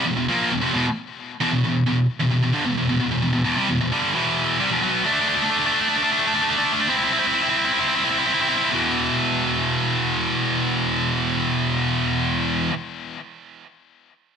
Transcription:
0.05 0.15 E2 medium
0.05 0.16 B2 medium
0.17 0.29 E2 medium
0.17 0.28 B2 medium
0.28 0.51 A#2 medium
0.28 0.51 F3 medium
0.28 0.51 A#3 loud
0.51 0.61 E2 medium
0.51 0.62 B2 medium
0.61 0.73 F2 loud
0.61 0.74 C3 loud
0.73 0.85 E2 medium
0.73 0.85 B2 loud
1.41 1.51 E2 loud
1.41 1.51 B2 loud
1.52 1.64 E2 medium
1.52 1.64 B2 medium
1.65 1.83 E2 medium
1.65 1.83 B2 medium
1.87 2.05 E2 medium
1.87 2.06 B2 medium
2.20 2.30 E2 medium
2.20 2.31 B2 medium
2.31 2.42 E2 medium
2.31 2.42 B2 medium
2.43 2.53 E2 medium
2.43 2.54 B2 medium
2.54 2.65 G2 medium
2.54 2.66 D3 loud
2.66 2.76 E2 medium
2.66 2.77 B2 medium
2.78 2.88 E2 medium
2.78 2.88 B2 medium
2.89 2.98 E2 medium
2.89 2.99 B2 medium
3.00 3.10 E2 medium
3.00 3.10 B2 medium
3.11 3.21 E2 medium
3.11 3.22 B2 medium
3.22 3.31 E2 medium
3.22 3.32 B2 medium
3.33 3.43 E2 medium
3.33 3.44 B2 medium
3.44 3.56 E2 loud
3.44 3.56 B2 loud
3.57 3.68 C3 medium
3.57 3.69 G3 loud
3.69 3.79 E2 medium
3.69 3.80 B2 medium
3.81 3.91 E2 medium
3.81 3.92 B2 medium
3.92 4.13 G2 medium
3.92 4.14 D3 loud
3.92 4.14 G3 loud
4.14 4.59 E2 medium
4.14 4.59 B2 loud
4.14 4.59 E3 loud
4.60 4.70 C3 loud
4.60 4.71 G3 loud
4.71 4.82 E2 loud
4.71 4.80 B2 loud
4.81 5.04 B2 medium
4.81 5.05 F#3 medium
4.81 5.04 B3 loud
5.04 5.11 A3 medium
5.04 5.12 D4 medium
5.11 5.19 A3 medium
5.11 5.20 D4 medium
5.20 5.27 A3 medium
5.20 5.28 D4 medium
5.27 5.34 A3 medium
5.27 5.36 D4 medium
5.34 5.42 A3 medium
5.34 5.44 D4 medium
5.42 5.49 A3 medium
5.42 5.50 D4 medium
5.50 5.57 A3 medium
5.50 5.58 D4 medium
5.57 5.65 A3 medium
5.57 5.66 D4 medium
5.65 5.72 A3 medium
5.65 5.74 D4 medium
5.72 5.80 A3 medium
5.72 5.82 D4 medium
5.80 5.88 A3 medium
5.80 5.89 D4 medium
5.89 5.96 A3 medium
5.89 5.97 D4 medium
5.97 6.03 A3 medium
5.97 6.03 D4 medium
6.03 6.11 A3 medium
6.03 6.11 D4 medium
6.12 6.18 A3 medium
6.12 6.20 D4 medium
6.19 6.26 A3 medium
6.19 6.27 D4 medium
6.27 6.34 A3 medium
6.27 6.35 D4 medium
6.34 6.41 A3 medium
6.34 6.43 D4 medium
6.42 6.49 A3 medium
6.42 6.50 D4 medium
6.50 6.57 A3 medium
6.50 6.58 D4 medium
6.57 6.64 A3 medium
6.57 6.64 D4 medium
6.64 6.72 A3 medium
6.64 6.72 D4 medium
6.72 6.79 A3 medium
6.72 6.81 D4 medium
6.80 6.87 A3 medium
6.80 6.89 D4 medium
6.89 6.96 C4 medium
6.89 6.97 E4 medium
6.97 7.04 C4 medium
6.97 7.04 E4 medium
7.04 7.12 C4 medium
7.04 7.12 E4 medium
7.12 7.18 C4 medium
7.12 7.20 E4 medium
7.19 7.26 C4 medium
7.19 7.27 E4 medium
7.27 7.34 C4 medium
7.27 7.34 E4 medium
7.34 7.42 C4 medium
7.34 7.42 E4 medium
7.42 7.49 C4 medium
7.42 7.50 E4 medium
7.50 7.57 C4 medium
7.50 7.58 E4 medium
7.57 7.64 C4 medium
7.57 7.65 E4 medium
7.65 7.72 C4 medium
7.65 7.73 E4 medium
7.73 7.79 C4 medium
7.73 7.80 E4 medium
7.80 7.87 C4 medium
7.80 7.88 E4 medium
7.88 7.95 C4 medium
7.88 7.95 E4 medium
7.95 8.03 C4 medium
7.95 8.03 E4 medium
8.04 8.10 C4 medium
8.04 8.11 E4 medium
8.10 8.18 C4 medium
8.10 8.18 E4 medium
8.19 8.25 C4 medium
8.19 8.26 E4 medium
8.26 8.33 C4 medium
8.26 8.33 E4 medium
8.34 8.40 C4 medium
8.34 8.41 E4 medium
8.41 8.49 C4 medium
8.41 8.49 E4 medium
8.49 8.56 C4 soft
8.49 8.57 E4 medium
8.56 8.63 C4 medium
8.56 8.64 E4 medium
8.64 8.71 C4 soft
8.64 8.72 E4 soft
8.71 12.70 E2 medium
8.71 12.72 B2 medium
8.71 12.74 E3 medium

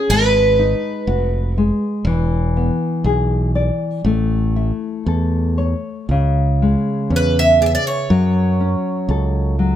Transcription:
0.00 0.12 G#4 medium
0.10 0.73 G#1 medium
0.10 1.56 G#3 medium
0.10 1.52 B4 medium
0.59 1.06 D#4 soft
1.07 1.71 F1 medium
1.07 1.54 F#4 medium
1.58 2.04 G#3 medium
2.05 2.69 E1 medium
2.05 4.01 E3 medium
2.57 3.04 B3 medium
3.04 3.69 B1 medium
3.04 3.53 G#4 medium
3.55 4.03 D5 medium
4.04 4.71 A1 medium
4.04 6.05 A3 medium
4.56 5.05 E4 soft
5.06 5.73 E2 medium
5.06 5.57 A4 soft
5.58 6.07 C#5 soft
6.09 6.75 C#2 medium
6.09 8.07 C#3 medium
6.62 7.10 G#3 soft
7.10 7.75 E2 medium
7.10 7.60 C#4 medium
7.16 7.37 B4 medium
7.39 7.61 E5 medium
7.61 8.09 G#4 soft
7.61 7.64 D5 medium
7.66 7.73 E5 medium
7.75 7.85 D5 medium
7.87 9.54 C#5 medium
8.10 8.74 F#2 medium
8.10 9.58 F#3 medium
8.60 9.08 C#4 soft
9.09 9.72 C#2 medium
9.09 9.57 A4 medium
9.59 9.76 F#3 medium

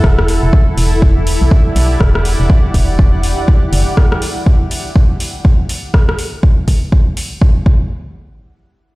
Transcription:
0.00 0.39 E1 loud
0.00 3.97 E4 medium
0.00 0.85 A4 medium
0.00 kick loud
0.00 cross-stick medium
0.19 3.73 D5 medium
0.19 cross-stick medium
0.28 open hi-hat medium
0.43 0.51 E1 medium
0.43 3.73 G4 medium
0.53 kick loud
0.78 1.38 E1 medium
0.78 open hi-hat loud
0.97 3.97 F#5 medium
1.02 kick loud
1.27 open hi-hat loud
1.42 1.50 B1 medium
1.51 kick loud
1.76 1.97 B1 medium
1.76 open hi-hat loud
2.01 2.36 E1 loud
2.01 kick loud
2.01 cross-stick medium
2.15 cross-stick medium
2.25 open hi-hat medium
2.40 2.48 E1 medium
2.50 kick loud
2.74 3.35 E1 medium
2.74 kick medium
2.74 open hi-hat medium
2.99 kick loud
3.23 open hi-hat medium
3.48 kick loud
3.73 3.85 F#1 medium
3.73 open hi-hat medium
3.97 kick loud
3.97 cross-stick medium
4.12 cross-stick medium
4.22 open hi-hat medium
4.46 kick loud
4.71 open hi-hat medium
4.96 kick loud
5.20 open hi-hat medium
5.45 kick loud
5.69 open hi-hat medium
5.94 kick loud
5.94 cross-stick medium
6.09 cross-stick medium
6.19 open hi-hat medium
6.43 kick loud
6.68 kick medium
6.68 open hi-hat medium
6.92 kick loud
7.17 open hi-hat medium
7.42 kick loud
7.66 kick loud

